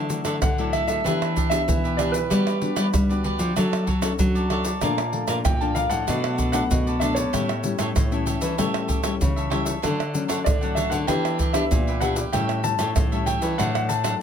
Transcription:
Already playing: D3 F#4 A4 D5 E5
0.09 F#3 A3 E4, pandeiro, shaker
0.25 D3 F#4 A4 D5 E5, pandeiro, tamborim, shaker
0.42 A2 D3 F#5, pandeiro, tamborim, shaker, surdo
0.58 F#3 A3 E4 A4 D5 E5, pandeiro, shaker
0.73 F#4 A4 D5 E5, pandeiro
0.87 D3 A4 D5 E5, pandeiro, shaker
1.04 E3 B3 D4 G4 B4 E5, pandeiro, tamborim, shaker, surdo
1.22 pandeiro, tamborim, shaker
1.36 D4 G4 B4 E5, pandeiro, shaker, surdo
1.50 B3 D4 G4 B4 E5, pandeiro, tamborim, shaker
1.68 B2 E3, pandeiro, shaker, surdo
1.84 G4 B4 E5, pandeiro, shaker
1.97 B3 D4 G4 B4 D5 E5, pandeiro, tamborim, shaker
2.12 G4 B4 E5, pandeiro, shaker
2.30 G3 B3 D4 F#4 G4 B4 D5, pandeiro, tamborim, shaker, surdo
2.47 pandeiro, tamborim, shaker
2.62 B3 D4 F#4, pandeiro
2.76 G3 F#4 G4 B4 D5, pandeiro, tamborim, shaker
2.93 D3 G3, pandeiro, tamborim, shaker, surdo
3.09 B3 D4 F#4 G4 B4 D5, pandeiro, shaker
3.24 F#4 G4 B4 D5, pandeiro
3.39 F3 G4 B4 D5, pandeiro, shaker
3.56 F#3 C#4 D4 F#4 A4 C#5 D5, pandeiro, tamborim, shaker, surdo
3.73 pandeiro, tamborim, shaker
3.87 F#4 A4 C#5 D5, pandeiro, surdo
4.02 C#4 D4 F#4 A4 C#5 D5, pandeiro, tamborim, shaker
4.19 F#3, pandeiro, shaker, surdo
4.35 A4 C#5 D5, pandeiro, shaker
4.50 C#4 D4 F#4 A4 C#5 D5, pandeiro, tamborim
4.65 A4 C#5 D5, pandeiro, shaker
4.81 A#2 F3 A3 D4 A#4 D5 F5 A5, pandeiro, tamborim, shaker, surdo
4.98 pandeiro, tamborim, shaker
5.12 F3 A3 D4, pandeiro
5.27 A#2 A#4 D5 F5 A5, pandeiro, tamborim, shaker
5.45 A#2 G5, pandeiro, tamborim, shaker, surdo
5.61 F3 A3 D4 D5 F5 A5, pandeiro, shaker
5.75 A#4 D5 F5 A5, pandeiro, shaker
5.90 A2 D5 F5 F#5 A5, pandeiro, shaker
6.07 B2 F#3 A3 D4 A4 B4 D5, pandeiro, tamborim, shaker, surdo
6.24 pandeiro, tamborim, shaker
6.38 D4 A4 B4 D5, pandeiro, shaker, surdo
6.52 F#3 A3 D4 A4 B4 D5 F#5, pandeiro, tamborim, shaker
6.70 F#2 B2, pandeiro, shaker, surdo
6.87 A4 B4 D5, pandeiro, shaker
7.00 F#3 A3 D4 A4 B4 D5 E5, pandeiro, tamborim, shaker
7.15 A4 B4 C#5 D5, pandeiro, shaker
7.33 A2 G3 C#4 E4 G4 A4 C#5 E5, pandeiro, tamborim, shaker, surdo
7.49 pandeiro, tamborim, shaker
7.63 G3 C#4 E4, pandeiro, shaker
7.79 A2 G4 A4 C#5 E5, pandeiro, tamborim, shaker
7.95 A2 E3, pandeiro, tamborim, shaker, surdo
8.11 G3 C#4 E4 A4 C#5 E5, pandeiro, shaker
8.26 G4 A4 C#5 E5, pandeiro, shaker
8.41 E3 A4 C#5 E5, pandeiro, shaker
8.58 A2 G3 A3 C#4 E4 G4 A4 C#5 E5, pandeiro, tamborim, shaker, surdo
8.74 pandeiro, tamborim, shaker
8.88 G4 A4 C#5 E5, pandeiro, shaker, surdo
9.03 G3 C#4 E4 G4 A4 C#5 E5, pandeiro, tamborim, shaker
9.21 C#3 E3, pandeiro, shaker, surdo
9.36 A4 C#5 E5, pandeiro, shaker
9.50 G3 C#4 E4 G4 A4 C#5 E5, pandeiro, tamborim
9.65 A4 C#5 E5, pandeiro, shaker
9.82 D3 F#3 A3 C#4 D4 A4 C#5 F#5, pandeiro, tamborim, shaker, surdo
10.00 pandeiro, tamborim, shaker
10.13 F#3 A3 C#4, pandeiro, shaker
10.28 D3 D4 A4 C#5 F#5, pandeiro, tamborim, shaker
10.44 A2 D3 D5, pandeiro, tamborim, shaker, surdo
10.61 F#3 A3 C#4 A4 C#5 F#5, pandeiro, shaker
10.75 D4 A4 C#5 E5 F#5, pandeiro, shaker
10.90 D3 A4 C#5 F#5, pandeiro, shaker
11.07 E3 B3 D4 G4 B4 E5 G5, pandeiro, tamborim, shaker, surdo
11.25 pandeiro, tamborim, shaker
11.39 D4 G4 B4 E5, pandeiro, shaker, surdo
11.53 B3 D4 G4 B4 E5, pandeiro, tamborim, shaker
11.71 A#2, pandeiro, shaker, surdo
11.87 G4 B4 E5, pandeiro, shaker
12.01 B3 D4 G4 B4 E5 F#5, pandeiro, tamborim, shaker
12.16 G4 B4 E5, pandeiro, shaker
12.33 A2 G3 C#4 E4 G4 A4 C#5 E5 G5, pandeiro, tamborim, shaker, surdo
12.49 pandeiro, tamborim, shaker
12.64 G3 C#4 E4 A5, pandeiro, shaker
12.79 A2 G4 A4 C#5 E5, pandeiro, tamborim, shaker
12.96 A2 E3, pandeiro, tamborim, shaker, surdo
13.12 G3 C#4 E4 A4 C#5 E5, pandeiro, shaker
13.26 G4 A4 C#5 E5 G5, pandeiro, shaker
13.41 E3 A4 C#5 E5, pandeiro, shaker
13.58 A2 F#3 A3 D4 A4 D5 F#5, pandeiro, tamborim, shaker, surdo
13.75 F#5, pandeiro, tamborim, shaker
13.89 D4 A4 D5 F#5 A5, pandeiro, shaker
14.03 F#3 A3 D4 A4 D5 F#5, pandeiro, tamborim, shaker

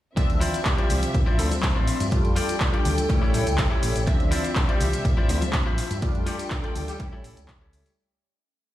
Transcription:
0.16 F3 C4 D4 E5, muted fingered electric bass stroke, kick, closed hi-hat, tambourine, shaker
0.30 D2, closed hi-hat, tambourine
0.40 E4 F4 C5 D5, open hi-hat, low conga, shaker
0.54 closed hi-hat, tambourine, shaker
0.65 G3 G4, kick, clap, closed hi-hat, tambourine, shaker
0.77 E4 F4 C5 D5, closed hi-hat, tambourine
0.90 C2, open hi-hat, low conga, shaker
1.03 closed hi-hat, tambourine, shaker
1.14 A1, muted clean electric guitar stroke, kick, closed hi-hat, tambourine, shaker
1.26 E4 F4 C5 D5, tambourine
1.39 D2 A3 A4, open hi-hat, shaker
1.51 A3 A4, closed hi-hat, tambourine, high conga, shaker
1.63 kick, clap, closed hi-hat, tambourine, shaker
1.75 A1 E4 F4 C5 D5, tambourine
1.88 open hi-hat, shaker
2.00 G2, closed hi-hat, tambourine, shaker
2.11 G3 A3 D4 F4 A4 G5, muted fingered electric bass stroke, kick, closed hi-hat, tambourine, shaker
2.25 F2, closed hi-hat, tambourine
2.36 F4 G4 A4 D5, open hi-hat, shaker
2.49 closed hi-hat, tambourine, shaker
2.60 kick, clap, closed hi-hat, shaker
2.73 F4 G4 A4 D5, closed hi-hat, tambourine
2.85 D2, open hi-hat, low conga, shaker
2.98 closed hi-hat, tambourine, shaker
3.09 G3 A3 C#4 E4, muted clean electric guitar stroke, kick, closed hi-hat, tambourine, high conga, shaker
3.22 A1 E4 G4 A4 C#5, tambourine, high conga
3.34 A1, open hi-hat, shaker
3.47 C#2, closed hi-hat, tambourine, shaker
3.58 G1, kick, clap, closed hi-hat, shaker
3.71 E4 G4 A4 C#5, tambourine
3.83 A1, open hi-hat, shaker
3.96 A1, closed hi-hat, tambourine, shaker
4.07 F3 C4 D4 E5, muted fingered electric bass stroke, kick, closed hi-hat, tambourine, shaker
4.20 D2, closed hi-hat, tambourine
4.31 E4 F4 C5 D5, open hi-hat, low conga, shaker
4.44 closed hi-hat, tambourine, shaker
4.56 G3 G4, kick, clap, closed hi-hat, tambourine, shaker
4.68 E4 F4 C5 D5, closed hi-hat, tambourine
4.81 C2, open hi-hat, low conga, shaker
4.93 closed hi-hat, tambourine, shaker
5.04 A1, muted clean electric guitar stroke, kick, closed hi-hat, tambourine, shaker
5.17 E4 F4 C5 D5, tambourine
5.29 D2, open hi-hat, shaker
5.41 closed hi-hat, tambourine, high conga, shaker
5.53 kick, clap, closed hi-hat, tambourine, shaker
5.66 A1 E4 F4 C5 E5, tambourine
5.78 open hi-hat, shaker
5.91 G2, closed hi-hat, tambourine, shaker
6.02 G3 A3 D4 F4 A4 G5, muted fingered electric bass stroke, kick, closed hi-hat, tambourine, shaker
6.15 F2, closed hi-hat, tambourine
6.26 G3 F4 G4 A4 D5, open hi-hat, shaker
6.39 closed hi-hat, tambourine, shaker
6.50 kick, clap, closed hi-hat, tambourine, shaker
6.63 F4 G4 A4 D5, closed hi-hat, tambourine
6.76 D2, open hi-hat, low conga, shaker
6.88 G3 G4, closed hi-hat, tambourine, shaker
6.99 G3 A3 C#4 E4 G4, muted clean electric guitar stroke, kick, closed hi-hat, tambourine, high conga, shaker
7.12 A1 E4 G4 A4 C#5, tambourine, high conga
7.24 A1, open hi-hat, shaker
7.37 C#2, closed hi-hat, tambourine, shaker
7.48 C#2, kick, clap, closed hi-hat, shaker
7.61 E4 G4 A4 C#5, tambourine
7.73 open hi-hat, shaker
7.86 open hi-hat, tambourine, shaker

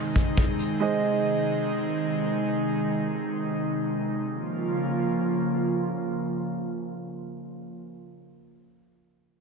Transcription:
Already playing: C3 D#3 G#3 D#4 G#4 C5 D#5
0.16 kick, closed hi-hat
0.37 kick, closed hi-hat
0.59 closed hi-hat
0.80 G#3 G#4 C5 D#5
4.29 C#3 F3 A#3 F4

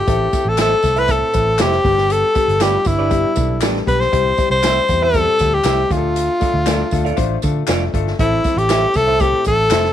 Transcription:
Already playing: G4
0.07 A1 A3 C4 E4 A4, kick, closed hi-hat, tambourine
0.32 A3 C4 E4 A4, kick, closed hi-hat, tambourine
0.45 A1 A4
0.57 A3 C4 E4 A4 C5 E5, snare, clap, closed hi-hat, tambourine
0.61 A4
0.83 C2 A3 C4 E4 A4, kick, closed hi-hat, tambourine
0.96 E4 A4 B4 C5 E5, closed hi-hat
1.08 A3 C4 E4 A4, kick, closed hi-hat, tambourine
1.33 A1 A3 C4 E4 B4, kick, closed hi-hat, tambourine
1.58 F1 A3 C4 E4 G4 A4 C5 E5, snare, clap, closed hi-hat, tambourine
1.72 snare
1.84 G1 G3 B3 D4 G4, kick, open hi-hat, tambourine
1.97 snare
2.10 A4, closed hi-hat, tambourine
2.34 G3 B3 D4 G4, kick, closed hi-hat, tambourine
2.48 G1, closed hi-hat
2.60 G3 B3 D4 F4 G4 B4 D5, snare, clap, closed hi-hat, tambourine
2.85 G1 G3 B3 D4 E4, kick, closed hi-hat, tambourine
2.99 D4 G4 B4 D5
3.09 G3 B3 D4 G4, kick, closed hi-hat, tambourine
3.35 B1 G3 B3 D4 A4, kick, closed hi-hat, tambourine
3.61 A1 G3 B3 D4 G4 A4 B4 D5, snare, clap, closed hi-hat, tambourine
3.75 snare
3.86 B1 G3 B3 D4 G4 B4, kick, closed hi-hat, tambourine
4.00 C5, snare
4.12 C2 G3 C4 E4 G4, kick, closed hi-hat, tambourine
4.37 G3 C4 E4 G4, kick, closed hi-hat, tambourine
4.50 C2 C5
4.62 G3 C4 E4 G4 C5 E5, snare, clap, closed hi-hat, tambourine
4.88 E2 G3 C4 E4 G4, kick, closed hi-hat, tambourine
5.02 E4 G4 A4 C5 E5
5.14 G3 C4 E4 A4, kick, closed hi-hat, tambourine
5.39 D2 G3 C4 E4 G4, kick, closed hi-hat, tambourine
5.54 G4
5.64 C2 G3 C4 E4 G4 C5 E5, snare, clap, closed hi-hat, tambourine
5.90 D2 A3 D4 F4 G#4, kick, closed hi-hat, tambourine
5.97 A4
6.16 closed hi-hat, tambourine
6.40 A3 D4 F4 A4, kick, closed hi-hat, tambourine
6.54 D2
6.66 A3 D4 F4 A4 D5 F5, snare, clap, closed hi-hat, tambourine
6.91 D2 A3 D4 F4 A4, kick, closed hi-hat, tambourine
7.05 F4 A4 D5 F5, closed hi-hat
7.17 A1 A3 D4 F4 C5, kick, closed hi-hat, tambourine
7.42 D3 A3 D4 F4 A4, kick, closed hi-hat, tambourine
7.67 F1 A3 D4 F4 A4 D5 F5, snare, clap, closed hi-hat, tambourine
7.94 G1 A3 D4 F4 A4, kick, closed hi-hat, tambourine
8.07 snare
8.19 A1 A3 C4 E4 A4, kick, closed hi-hat
8.44 A3 C4 E4 A4, kick, closed hi-hat, tambourine
8.56 A1 G4, closed hi-hat
8.69 A3 C4 E4 A4 C5 E5, snare, clap, closed hi-hat, tambourine
8.94 C2 A3 C4 E4 A4, kick, closed hi-hat, tambourine
9.07 E4 A4 C5 E5
9.20 A3 C4 E4 G4 A4, kick, closed hi-hat, tambourine
9.45 A1 A3 C4 E4 A4, kick, closed hi-hat, tambourine
9.70 F1 A3 C4 E4 A4 C5 E5, snare, clap, closed hi-hat, tambourine
9.84 snare

